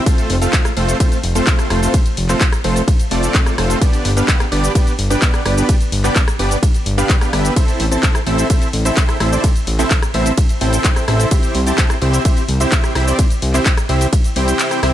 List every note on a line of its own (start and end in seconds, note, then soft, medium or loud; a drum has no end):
0.06 0.35 A3 medium
0.06 0.35 C4 medium
0.06 0.35 F4 medium
0.06 0.35 A4 medium
0.06 0.35 C5 loud
0.06 kick loud
0.06 closed hi-hat loud
0.06 ride medium
0.06 shaker medium
0.18 closed hi-hat soft
0.18 shaker soft
0.30 0.47 F1 loud
0.30 open hi-hat loud
0.42 0.70 A3 medium
0.42 0.70 C4 medium
0.42 0.70 F4 medium
0.42 0.70 A4 medium
0.42 0.70 F5 medium
0.42 closed hi-hat soft
0.42 shaker medium
0.53 kick loud
0.53 clap loud
0.53 closed hi-hat loud
0.53 ride medium
0.53 shaker medium
0.65 cross-stick medium
0.65 closed hi-hat soft
0.65 shaker soft
0.77 0.94 F1 medium
0.77 0.97 A3 medium
0.77 0.97 C4 medium
0.77 0.97 F4 medium
0.77 0.97 A4 medium
0.77 0.97 C5 loud
0.77 open hi-hat medium
0.88 closed hi-hat soft
0.88 shaker medium
1.00 1.18 A3 medium
1.00 1.18 C4 medium
1.00 1.18 F4 medium
1.00 1.18 A4 medium
1.00 1.18 C5 loud
1.00 kick loud
1.00 closed hi-hat loud
1.00 ride medium
1.00 shaker medium
1.12 closed hi-hat soft
1.12 shaker soft
1.24 1.41 F1 medium
1.24 open hi-hat loud
1.35 1.68 A3 loud
1.35 1.68 C4 medium
1.35 1.68 F4 medium
1.35 1.68 A4 medium
1.35 1.68 C5 loud
1.35 closed hi-hat soft
1.35 shaker medium
1.47 kick loud
1.47 clap loud
1.47 closed hi-hat loud
1.47 ride medium
1.47 shaker medium
1.59 cross-stick medium
1.59 closed hi-hat soft
1.59 shaker soft
1.70 1.88 F1 loud
1.70 1.80 A3 medium
1.70 1.80 C4 medium
1.70 1.80 F4 medium
1.70 1.80 A4 medium
1.70 1.80 C5 loud
1.70 cross-stick medium
1.70 open hi-hat loud
1.82 2.00 A3 medium
1.82 2.00 C4 medium
1.82 2.00 F4 medium
1.82 2.00 A4 medium
1.82 2.00 C5 medium
1.82 shaker medium
1.94 kick loud
1.94 closed hi-hat loud
1.94 ride medium
1.94 shaker medium
2.06 closed hi-hat soft
2.06 shaker soft
2.17 2.35 F1 loud
2.17 open hi-hat loud
2.29 2.47 A3 medium
2.29 2.47 C4 medium
2.29 2.47 F4 medium
2.29 2.47 A4 medium
2.29 2.47 C5 loud
2.29 clap soft
2.29 closed hi-hat soft
2.29 shaker medium
2.41 kick loud
2.41 clap loud
2.41 closed hi-hat loud
2.41 ride medium
2.41 shaker medium
2.52 cross-stick medium
2.52 closed hi-hat soft
2.52 shaker soft
2.64 2.82 F1 loud
2.64 2.82 A3 loud
2.64 2.82 C4 medium
2.64 2.82 F4 medium
2.64 2.82 A4 medium
2.64 2.82 C5 loud
2.64 open hi-hat medium
2.76 closed hi-hat soft
2.76 shaker medium
2.88 kick loud
2.88 closed hi-hat medium
2.88 ride medium
2.88 shaker medium
3.00 closed hi-hat soft
3.00 shaker soft
3.11 3.29 F1 medium
3.11 3.55 A3 medium
3.11 3.55 C4 medium
3.11 3.55 F4 medium
3.11 3.55 A4 medium
3.11 3.55 D5 medium
3.11 open hi-hat loud
3.23 closed hi-hat soft
3.23 shaker medium
3.35 kick loud
3.35 clap loud
3.35 closed hi-hat medium
3.35 ride medium
3.35 shaker medium
3.46 cross-stick medium
3.46 closed hi-hat soft
3.46 shaker soft
3.58 3.75 F1 loud
3.58 3.79 A3 medium
3.58 3.79 C4 medium
3.58 3.79 F4 medium
3.58 3.79 A4 medium
3.58 3.79 C5 loud
3.58 cross-stick medium
3.58 open hi-hat loud
3.70 closed hi-hat soft
3.70 shaker medium
3.81 4.10 B3 medium
3.81 4.10 D4 medium
3.81 4.10 G4 medium
3.81 4.10 B4 medium
3.81 4.10 D5 loud
3.81 kick loud
3.81 closed hi-hat medium
3.81 ride medium
3.81 shaker medium
3.93 closed hi-hat soft
3.93 shaker soft
4.05 4.22 G1 loud
4.05 open hi-hat loud
4.17 4.45 B3 medium
4.17 4.45 D4 medium
4.17 4.45 G4 medium
4.17 4.45 B4 medium
4.17 4.45 F5 medium
4.17 closed hi-hat soft
4.17 shaker medium
4.28 kick loud
4.28 clap loud
4.28 closed hi-hat loud
4.28 ride medium
4.28 shaker medium
4.40 cross-stick medium
4.40 closed hi-hat soft
4.40 shaker soft
4.52 4.69 G1 medium
4.52 4.72 B3 medium
4.52 4.72 D4 medium
4.52 4.72 G4 medium
4.52 4.72 B4 medium
4.52 4.72 D5 loud
4.52 open hi-hat medium
4.64 closed hi-hat soft
4.64 shaker medium
4.75 4.93 B3 medium
4.75 4.93 D4 medium
4.75 4.93 G4 medium
4.75 4.93 B4 medium
4.75 4.93 D5 loud
4.75 kick loud
4.75 closed hi-hat medium
4.75 ride medium
4.75 shaker medium
4.87 closed hi-hat soft
4.87 shaker soft
4.99 5.16 G1 medium
4.99 open hi-hat loud
5.10 5.43 B3 loud
5.10 5.43 D4 medium
5.10 5.43 G4 medium
5.10 5.43 B4 medium
5.10 5.43 D5 loud
5.10 closed hi-hat soft
5.10 shaker medium
5.22 kick loud
5.22 clap loud
5.22 closed hi-hat medium
5.22 ride medium
5.22 shaker medium
5.34 cross-stick medium
5.34 closed hi-hat soft
5.34 shaker soft
5.46 5.63 G1 loud
5.46 5.55 B3 medium
5.46 5.55 D4 medium
5.46 5.55 G4 medium
5.46 5.56 B4 medium
5.46 5.55 D5 loud
5.46 cross-stick medium
5.46 open hi-hat loud
5.57 5.75 B3 medium
5.57 5.75 D4 medium
5.57 5.75 G4 medium
5.57 5.75 B4 medium
5.57 5.75 D5 medium
5.57 shaker medium
5.69 kick loud
5.69 closed hi-hat medium
5.69 ride medium
5.69 shaker medium
5.81 closed hi-hat soft
5.81 shaker soft
5.92 6.10 G1 loud
5.92 open hi-hat loud
6.04 6.22 B3 medium
6.04 6.22 D4 medium
6.04 6.22 G4 medium
6.04 6.22 B4 medium
6.04 6.22 D5 loud
6.04 clap soft
6.04 closed hi-hat soft
6.04 shaker medium
6.16 kick loud
6.16 clap loud
6.16 closed hi-hat medium
6.16 ride medium
6.16 shaker medium
6.28 cross-stick medium
6.28 closed hi-hat soft
6.28 shaker soft
6.39 6.57 G1 loud
6.39 6.57 B3 loud
6.39 6.57 D4 medium
6.39 6.57 G4 medium
6.39 6.57 B4 medium
6.39 6.57 D5 loud
6.39 open hi-hat medium
6.51 closed hi-hat soft
6.51 shaker medium
6.63 kick loud
6.63 closed hi-hat medium
6.63 ride medium
6.63 shaker medium
6.74 closed hi-hat soft
6.74 shaker soft
6.86 7.04 G1 medium
6.86 open hi-hat loud
6.98 7.18 B3 medium
6.98 7.18 D4 medium
6.98 7.18 G4 medium
6.98 7.18 B4 medium
6.98 7.18 F5 loud
6.98 closed hi-hat soft
6.98 shaker medium
7.09 kick loud
7.09 clap loud
7.09 closed hi-hat medium
7.09 ride medium
7.09 shaker medium
7.21 7.31 B3 medium
7.21 7.31 D4 medium
7.21 7.31 G4 medium
7.21 7.31 B4 medium
7.21 7.31 F5 medium
7.21 cross-stick medium
7.21 closed hi-hat soft
7.21 shaker soft
7.33 7.50 G1 loud
7.33 7.54 B3 medium
7.33 7.54 D4 medium
7.33 7.54 G4 medium
7.33 7.54 B4 medium
7.33 7.54 E5 medium
7.33 cross-stick medium
7.33 open hi-hat loud
7.45 closed hi-hat soft
7.45 shaker medium
7.56 7.85 C4 loud
7.56 7.85 E4 medium
7.56 7.85 A4 medium
7.56 7.85 C5 medium
7.56 7.85 E5 loud
7.56 kick loud
7.56 closed hi-hat medium
7.56 ride medium
7.56 shaker medium
7.68 closed hi-hat soft
7.68 shaker soft
7.80 7.97 A1 loud
7.80 open hi-hat loud
7.91 8.20 C4 medium
7.91 8.20 E4 medium
7.91 8.20 A4 medium
7.91 8.20 C5 medium
7.91 8.20 A5 medium
7.91 closed hi-hat soft
7.91 shaker medium
8.03 kick loud
8.03 clap loud
8.03 closed hi-hat medium
8.03 ride medium
8.03 shaker medium
8.15 cross-stick medium
8.15 closed hi-hat soft
8.15 shaker soft
8.27 8.44 A1 loud
8.27 8.47 C4 medium
8.27 8.47 E4 medium
8.27 8.47 A4 medium
8.27 8.47 C5 medium
8.27 8.47 E5 loud
8.27 open hi-hat medium
8.38 closed hi-hat soft
8.38 shaker medium
8.50 8.68 C4 loud
8.50 8.68 E4 medium
8.50 8.68 A4 medium
8.50 8.68 C5 medium
8.50 8.68 E5 loud
8.50 kick loud
8.50 closed hi-hat medium
8.50 ride medium
8.50 shaker medium
8.62 closed hi-hat soft
8.62 shaker soft
8.73 8.91 A1 medium
8.73 open hi-hat loud
8.85 9.18 C4 loud
8.85 9.18 E4 medium
8.85 9.18 A4 medium
8.85 9.18 C5 medium
8.85 9.18 E5 loud
8.85 closed hi-hat soft
8.85 shaker medium
8.97 kick loud
8.97 clap loud
8.97 closed hi-hat medium
8.97 ride medium
8.97 shaker medium
9.09 cross-stick medium
9.09 closed hi-hat soft
9.09 shaker soft
9.20 9.38 A1 loud
9.20 9.30 C4 medium
9.20 9.31 E4 medium
9.20 9.31 A4 medium
9.20 9.30 C5 medium
9.20 9.30 E5 loud
9.20 cross-stick medium
9.20 open hi-hat loud
9.32 9.50 C4 medium
9.32 9.50 E4 medium
9.32 9.50 A4 medium
9.32 9.50 C5 medium
9.32 9.50 D5 medium
9.32 shaker medium
9.44 kick loud
9.44 closed hi-hat medium
9.44 ride medium
9.44 shaker medium
9.56 closed hi-hat soft
9.56 shaker soft
9.67 9.85 A1 loud
9.67 open hi-hat loud
9.79 9.97 C4 medium
9.79 9.97 E4 medium
9.79 9.97 A4 medium
9.79 9.97 C5 medium
9.79 9.97 E5 loud
9.79 clap soft
9.79 closed hi-hat soft
9.79 shaker medium
9.91 kick loud
9.91 clap loud
9.91 closed hi-hat medium
9.91 ride medium
9.91 shaker medium
10.02 cross-stick medium
10.02 closed hi-hat soft
10.02 shaker soft
10.14 10.32 A1 medium
10.14 10.32 C4 loud
10.14 10.32 E4 medium
10.14 10.32 A4 medium
10.14 10.32 C5 medium
10.14 10.32 E5 loud
10.14 open hi-hat medium
10.26 closed hi-hat soft
10.26 shaker medium
10.37 kick loud
10.37 closed hi-hat medium
10.37 ride medium
10.37 shaker medium
10.49 closed hi-hat soft
10.49 shaker soft
10.61 10.79 A1 medium
10.61 11.05 C4 medium
10.61 11.05 E4 medium
10.61 11.05 A4 medium
10.61 11.05 C5 medium
10.61 11.05 G5 medium
10.61 open hi-hat loud
10.73 closed hi-hat soft
10.73 shaker medium
10.84 kick loud
10.84 clap loud
10.84 closed hi-hat medium
10.84 ride medium
10.84 shaker medium
10.96 cross-stick medium
10.96 closed hi-hat soft
10.96 shaker soft
11.08 11.26 A1 loud
11.08 11.29 C4 medium
11.08 11.29 E4 medium
11.08 11.29 A4 medium
11.08 11.29 C5 medium
11.08 11.29 E5 loud
11.08 cross-stick medium
11.08 open hi-hat medium
11.20 closed hi-hat soft
11.20 shaker medium
11.31 11.60 C4 medium
11.31 11.60 E4 medium
11.31 11.60 G4 medium
11.31 11.60 C5 medium
11.31 11.60 E5 loud
11.31 kick loud
11.31 closed hi-hat loud
11.31 ride medium
11.31 shaker medium
11.43 closed hi-hat soft
11.43 shaker soft
11.55 11.72 C2 loud
11.55 open hi-hat loud
11.67 11.95 C4 medium
11.67 11.95 E4 medium
11.67 11.95 G4 medium
11.67 11.95 C5 medium
11.67 11.95 A5 medium
11.67 closed hi-hat soft
11.67 shaker medium
11.78 kick loud
11.78 clap loud
11.78 closed hi-hat loud
11.78 ride medium
11.78 shaker medium
11.90 cross-stick medium
11.90 closed hi-hat soft
11.90 shaker soft
12.02 12.19 C2 loud
12.02 12.22 C4 medium
12.02 12.22 E4 medium
12.02 12.22 G4 medium
12.02 12.22 C5 medium
12.02 12.22 E5 loud
12.02 open hi-hat medium
12.13 closed hi-hat soft
12.13 shaker medium
12.25 12.43 C4 medium
12.25 12.43 E4 medium
12.25 12.43 G4 medium
12.25 12.43 C5 medium
12.25 12.43 E5 loud
12.25 kick loud
12.25 closed hi-hat loud
12.25 ride medium
12.25 shaker medium
12.37 closed hi-hat soft
12.37 shaker soft
12.49 12.66 C2 medium
12.49 open hi-hat loud
12.60 12.93 C4 loud
12.60 12.93 E4 medium
12.60 12.93 G4 medium
12.60 12.93 C5 medium
12.60 12.93 E5 loud
12.60 closed hi-hat soft
12.60 shaker medium
12.72 kick loud
12.72 clap loud
12.72 closed hi-hat loud
12.72 ride medium
12.72 shaker medium
12.84 cross-stick medium
12.84 closed hi-hat soft
12.84 shaker soft
12.95 13.13 C2 loud
12.95 13.05 C4 medium
12.95 13.05 E4 medium
12.95 13.05 G4 medium
12.95 13.05 C5 medium
12.95 13.05 E5 loud
12.95 cross-stick medium
12.95 open hi-hat medium
13.07 13.25 C4 medium
13.07 13.25 E4 medium
13.07 13.25 G4 medium
13.07 13.25 C5 medium
13.07 13.25 D5 medium
13.07 shaker medium
13.19 kick loud
13.19 closed hi-hat loud
13.19 ride medium
13.19 shaker medium
13.30 closed hi-hat soft
13.30 shaker soft
13.42 13.60 C2 loud
13.42 open hi-hat loud
13.54 13.72 C4 medium
13.54 13.72 E4 medium
13.54 13.72 G4 medium
13.54 13.72 C5 medium
13.54 13.72 E5 medium
13.54 clap soft
13.54 closed hi-hat soft
13.54 shaker medium
13.66 kick loud
13.66 clap loud
13.66 closed hi-hat loud
13.66 ride medium
13.66 shaker medium
13.77 cross-stick medium
13.77 closed hi-hat soft
13.77 shaker soft
13.89 14.07 C2 loud
13.89 14.07 C4 loud
13.89 14.07 E4 medium
13.89 14.07 G4 medium
13.89 14.07 C5 medium
13.89 14.07 E5 loud
13.89 open hi-hat medium
14.01 closed hi-hat soft
14.01 shaker medium
14.13 kick loud
14.13 closed hi-hat loud
14.13 ride medium
14.13 shaker medium
14.24 closed hi-hat soft
14.24 shaker soft
14.36 14.54 C2 medium
14.36 14.80 C4 medium
14.36 14.80 E4 medium
14.36 14.80 G4 medium
14.36 14.80 C5 medium
14.36 14.80 G5 medium
14.36 open hi-hat loud
14.48 closed hi-hat soft
14.48 shaker medium
14.59 clap loud
14.59 closed hi-hat loud
14.59 ride medium
14.59 shaker medium
14.71 cross-stick medium
14.71 closed hi-hat soft
14.71 shaker soft
14.83 14.93 C2 medium
14.83 14.93 C4 loud
14.83 14.93 E4 medium
14.83 14.93 G4 medium
14.83 14.93 C5 medium
14.83 14.93 E5 loud
14.83 cross-stick medium
14.83 open hi-hat medium